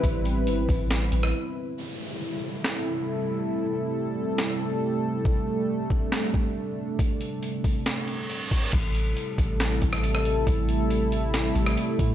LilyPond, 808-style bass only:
\new Staff \with { instrumentName = "808-style bass" } { \clef bass \time 4/4 \key a \minor \tempo 4 = 138 a,,4 g,,16 a,,16 a,,4 a,,8 r4 | r1 | r1 | r1 |
r1 | a,,4 r8 a,,4 a,,4. | a,,2~ a,,8 a,,8 r8 a,8 | }